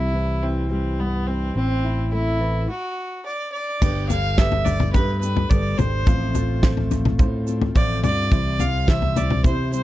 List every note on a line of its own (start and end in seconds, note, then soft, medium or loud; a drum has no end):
0.00 1.52 C2 medium
0.00 0.14 C3 soft
0.00 0.12 E3 soft
0.00 0.70 G3 soft
0.00 1.27 C4 soft
0.00 0.42 E4 soft
0.00 0.44 E4 medium
0.14 1.52 E3 soft
0.43 0.70 C4 medium
0.43 1.83 E4 soft
0.71 1.56 G3 soft
0.71 1.01 C4 medium
0.99 1.52 G2 soft
0.99 1.28 B3 medium
1.27 1.55 C4 medium
1.27 1.53 C4 soft
1.56 2.67 A1 medium
1.56 2.69 A2 soft
1.56 2.08 C4 medium
1.56 2.66 C4 soft
1.84 2.69 E4 soft
2.13 2.66 A3 soft
2.13 2.65 E4 medium
2.40 2.65 E3 soft
2.70 3.22 F#4 medium
3.26 3.52 D5 medium
3.52 4.05 D5 medium
3.81 4.96 G1 medium
3.81 6.03 G1 medium
3.81 6.03 G2 medium
3.81 4.10 G3 medium
3.81 4.24 A3 medium
3.81 4.10 B3 medium
3.81 4.25 D4 medium
3.81 4.10 D4 medium
3.81 4.25 G4 medium
3.81 4.10 G4 medium
3.81 4.09 A4 medium
3.81 4.25 B4 medium
3.81 kick medium
3.81 floor tom medium
3.81 crash medium
3.81 shaker medium
4.09 4.37 D4 soft
4.09 4.38 G4 soft
4.09 4.38 A4 soft
4.09 4.39 F5 medium
4.09 floor tom medium
4.09 shaker medium
4.37 4.94 G3 medium
4.37 4.81 A3 medium
4.37 4.93 B3 medium
4.37 4.93 D4 medium
4.37 4.81 D4 medium
4.37 4.81 G4 medium
4.37 4.94 G4 medium
4.37 4.95 A4 medium
4.37 4.82 B4 medium
4.37 4.66 E5 loud
4.37 kick loud
4.37 snare medium
4.37 shaker medium
4.52 floor tom medium
4.65 4.92 D5 medium
4.65 floor tom medium
4.65 shaker medium
4.80 floor tom medium
4.80 mid tom medium
4.93 5.44 G2 medium
4.93 5.37 A3 medium
4.93 5.22 B3 medium
4.93 5.37 D4 medium
4.93 5.23 D4 medium
4.93 5.37 G4 medium
4.93 5.22 G4 medium
4.93 5.21 A4 medium
4.93 5.20 B4 medium
4.93 5.37 B4 medium
4.93 kick medium
4.93 floor tom medium
4.93 shaker medium
5.21 5.50 D4 soft
5.21 5.51 G4 soft
5.21 5.51 A4 soft
5.21 5.51 B4 medium
5.21 shaker medium
5.36 floor tom medium
5.50 5.75 G1 loud
5.50 5.79 G3 medium
5.50 5.94 A3 medium
5.50 5.79 B3 medium
5.50 5.94 D4 medium
5.50 5.79 D4 medium
5.50 5.94 G4 medium
5.50 5.79 G4 medium
5.50 5.78 A4 medium
5.50 5.94 B4 medium
5.50 5.79 D5 medium
5.50 kick loud
5.50 shaker medium
5.78 6.03 G#1 medium
5.78 6.07 D4 soft
5.78 6.07 G4 soft
5.78 6.07 A4 medium
5.78 6.63 C5 medium
5.78 floor tom medium
5.78 mid tom medium
5.78 shaker medium
6.06 7.21 A1 medium
6.06 8.28 A1 medium
6.06 6.35 A2 medium
6.06 8.28 A2 medium
6.06 6.35 F3 medium
6.06 6.50 A3 medium
6.06 6.35 A3 medium
6.06 6.50 C4 medium
6.06 6.35 C4 medium
6.06 6.50 F4 medium
6.06 6.34 F4 medium
6.06 6.33 A4 medium
6.06 6.50 C5 medium
6.06 kick loud
6.06 floor tom medium
6.06 shaker medium
6.35 6.62 A3 soft
6.35 6.63 C4 soft
6.35 6.63 F4 soft
6.35 6.63 A4 soft
6.35 floor tom medium
6.35 shaker medium
6.62 7.19 A2 medium
6.62 7.19 F3 medium
6.62 7.06 A3 medium
6.62 7.18 A3 medium
6.62 7.06 C4 medium
6.62 7.19 C4 medium
6.62 7.06 F4 medium
6.62 7.19 F4 medium
6.62 7.20 A4 medium
6.62 7.06 C5 medium
6.62 kick loud
6.62 snare medium
6.62 shaker medium
6.77 floor tom medium
6.91 floor tom medium
6.91 shaker medium
7.05 floor tom medium
7.05 mid tom medium
7.18 7.69 A2 medium
7.18 7.62 A3 medium
7.18 7.48 A3 medium
7.18 7.62 C4 medium
7.18 7.47 C4 medium
7.18 7.62 F4 medium
7.18 7.46 F4 medium
7.18 7.45 A4 medium
7.18 7.62 C5 medium
7.18 kick loud
7.18 floor tom medium
7.18 shaker medium
7.47 7.74 A3 soft
7.47 7.74 C4 soft
7.47 7.74 F4 medium
7.47 7.74 A4 soft
7.47 shaker medium
7.61 floor tom medium
7.75 8.00 A1 medium
7.75 8.03 A2 medium
7.75 8.04 F3 medium
7.75 8.18 A3 medium
7.75 8.03 A3 medium
7.75 8.18 C4 medium
7.75 8.02 C4 medium
7.75 8.02 F4 medium
7.75 8.19 F4 medium
7.75 8.01 A4 medium
7.75 8.19 C5 medium
7.75 8.02 D5 medium
7.75 kick loud
7.75 shaker medium
8.02 8.28 G2 medium
8.02 8.31 A3 soft
8.02 8.31 C4 soft
8.02 8.32 F4 soft
8.02 8.31 A4 soft
8.02 8.62 D5 loud
8.02 floor tom medium
8.02 mid tom medium
8.02 shaker medium
8.31 9.46 C2 medium
8.31 9.83 C2 medium
8.31 8.60 C3 medium
8.31 9.83 C3 medium
8.31 8.60 E3 medium
8.31 8.75 G3 medium
8.31 8.60 G3 medium
8.31 8.75 C4 medium
8.31 8.59 C4 medium
8.31 8.75 E4 medium
8.31 8.59 E4 medium
8.31 8.75 C5 medium
8.31 8.58 C5 medium
8.31 kick loud
8.31 floor tom medium
8.31 shaker medium
8.59 8.87 G3 soft
8.59 8.88 C4 soft
8.59 8.88 E4 soft
8.59 8.88 C5 soft
8.59 8.91 F5 medium
8.59 floor tom medium
8.59 shaker medium
8.87 9.45 C3 medium
8.87 9.83 E3 medium
8.87 9.31 G3 medium
8.87 9.43 G3 medium
8.87 9.31 C4 medium
8.87 9.45 C4 medium
8.87 9.31 E4 medium
8.87 9.45 E4 medium
8.87 9.31 C5 medium
8.87 9.45 C5 medium
8.87 9.19 E5 medium
8.87 kick loud
8.87 snare medium
8.87 shaker medium
9.02 floor tom medium
9.16 9.44 D5 medium
9.16 floor tom medium
9.16 shaker medium
9.30 floor tom medium
9.30 mid tom medium
9.44 9.83 C3 medium
9.44 9.73 G3 medium
9.44 9.83 G3 medium
9.44 9.83 C4 medium
9.44 9.72 C4 medium
9.44 9.83 E4 medium
9.44 9.71 E4 medium
9.44 9.71 C5 medium
9.44 9.83 C5 medium
9.44 9.71 C5 medium
9.44 kick loud
9.44 floor tom medium
9.44 shaker medium
9.72 9.83 G3 soft
9.72 9.83 C4 soft
9.72 9.83 E4 soft
9.72 9.83 C5 medium
9.72 shaker medium